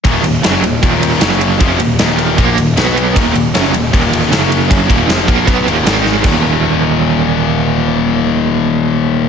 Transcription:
<<
  \new Staff \with { instrumentName = "Distorted electric guitar" } { \clef bass \time 4/4 \key ees \minor \tempo 4 = 155 <ees, bes, ees>8 <ees, bes,>8 <ges, des ges>8 <ees, bes,>8 <ees, bes, ees>4 <ges, des ges>4 | <f, c f>8 <ees, bes,>8 <ees, bes, ees>4 <bes, f bes>8 <ees, bes,>8 <b, fis b>4 | <ees, bes, ees>8 <ees, bes,>8 <ges, des ges>8 <ees, bes,>8 <ees, bes, ees>4 <ges, des ges>4 | <ges, des ges>8 <ees, bes, ees>8 <f, c f>8 <bes, f bes>8 <ces ges ces'>8 <ees, bes, ees>8 <aes, ees aes>4 |
<ees, bes, ees>1~ | <ees, bes, ees>1 | }
  \new Staff \with { instrumentName = "Overdriven electric guitar" } { \clef bass \time 4/4 \key ees \minor <ees, bes, ees>8 <ees, bes,>8 <ges, des ges>8 <ees, bes,>8 <ees, bes, ees>4 <ges, des ges>4 | <f, c f>8 <ees, bes,>8 <ees, bes, ees>4 <bes, f bes>8 <ees, bes,>8 <b, fis b>4 | <ees, bes, ees>8 <ees, bes,>8 <ges, des ges>8 <ees, bes,>8 <ees, bes, ees>4 <ges, des ges>4 | <ges, des ges>8 <ees, bes, ees>8 <f, c f>8 <bes, f bes>8 <ces ges ces'>8 <ees, bes, ees>8 <aes, ees aes>4 |
<ees, bes, ees>1~ | <ees, bes, ees>1 | }
  \new Staff \with { instrumentName = "Picked electric bass" } { \clef bass \time 4/4 \key ees \minor ees,,8 ees,,8 ges,,8 ees,,8 ees,,4 ges,,4 | f,,8 ees,,8 ees,,4 bes,,8 ees,,8 b,,4 | ees,,8 ees,,8 ges,,8 ees,,8 ees,,4 ges,,4 | ges,,8 ees,,8 f,,8 bes,,8 ces,8 ees,,8 aes,,4 |
ees,,1~ | ees,,1 | }
  \new DrumStaff \with { instrumentName = "Drums" } \drummode { \time 4/4 <bd cymr>8 cymr8 <cymr sn>8 cymr8 <bd cymr>8 cymr8 <cymr sn>8 cymr8 | <bd cymr>8 cymr8 <cymr sn>8 cymr8 <bd cymr>8 cymr8 <cymr sn>8 cymr8 | <bd cymr>8 cymr8 <cymr sn>8 cymr8 <bd cymr>8 cymr8 <cymr sn>8 cymr8 | <bd cymr>8 <bd cymr>8 <cymr sn>8 <bd cymr>8 <bd cymr>8 cymr8 <cymr sn>8 sn8 |
<cymc bd>4 r4 r4 r4 | r4 r4 r4 r4 | }
>>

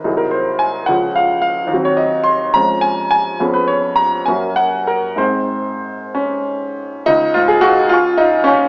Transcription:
\new Staff \with { instrumentName = "Grand piano" } { \time 6/8 \key des \major \tempo 4. = 71 << { r16 bes'16 c''8 aes''8 ges''8 f''8 f''8 | r16 des''16 ees''8 c'''8 bes''8 aes''8 aes''8 | r16 ces''16 des''8 bes''8 aes''8 ges''8 bes'8 | c''4. des'4. |
ees'8 f'16 aes'16 ges'8 f'8 ees'8 des'8 | } \\ { <c, ges ees' aes'>4. <des, f des' aes'>4. | <ees, ges c' ges'>4. <f, aes des' f'>4. | <f, ces' des' aes'>4. <ges, bes des' ges'>4. | <aes, aes c' ees'>2. |
des,8 aes,8 <f'' aes'' des'''>8 <f'' aes'' des'''>8 f''8 <f'' aes'' des'''>8 | } >> }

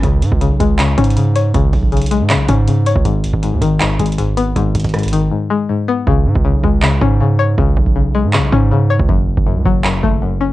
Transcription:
<<
  \new Staff \with { instrumentName = "Synth pluck" } { \clef bass \time 4/4 \key gis \phrygian \tempo 4 = 159 cis4 cis8 gis8 cis8 cis'8 cis8 cis''8 | cis4 cis8 gis8 cis8 cis'8 cis8 cis''8 | gis,4 gis,8 dis8 gis,8 gis8 gis,8 b8 | gis,4 gis,8 dis8 gis,8 gis8 gis,8 b8 |
cis4 cis8 gis8 cis8 cis'8 cis8 cis''8 | cis4 cis8 gis8 cis8 cis'8 cis8 cis''8 | fis,4 fis,8 fis8 fis,8 a8 fis,8 cis'8 | }
  \new Staff \with { instrumentName = "808-style bass" } { \clef bass \time 4/4 \key gis \phrygian cis,8 gis,16 cis,8 b,,16 cis,4 gis,4. | cis,8 b,,4~ b,,16 gis,16. b,,16. gis,4~ gis,16 cis,16 | gis,,8. gis,,8 dis,16 gis,,4 gis,,4. | gis,,8 gis,,16 gis,,4~ gis,,16 r2 |
cis,8 gis,16 cis,8 b,,16 cis,4 gis,4. | cis,8 b,,4~ b,,16 gis,16. b,,16. gis,4~ gis,16 cis,16 | fis,,8. fis,,8 cis,16 fis,,4 fis,,4. | }
  \new DrumStaff \with { instrumentName = "Drums" } \drummode { \time 4/4 <hh bd>8 hh16 bd16 hh8 <hh bd>8 \tuplet 3/2 { <hc hh>16 r16 r16 <hh bd>16 hh16 hh16 } hh8 hh8 | <hh bd>8 <hho bd>16 bd16 hh32 hh32 hh32 hh32 hh8 <hc hh>8 <hh bd>8 hh8 hh16 bd16 | <hh bd>8 hh16 bd16 hh8 <hh bd>8 \tuplet 3/2 { <hc hh>16 r16 r16 <hh bd>16 hh16 hh16 } hh8 hh8 | <hh bd>8 <hh hho bd>32 hh32 <hh bd>32 hh32 <hh ss>32 hh32 hh32 hh32 hh8 r4 r4 |
bd8. bd16 r8 bd8 hc8 bd8 r4 | bd8 bd16 bd16 r4 hc8 bd8 r8. bd16 | bd8. bd16 r8 bd8 hc8 bd8 r4 | }
>>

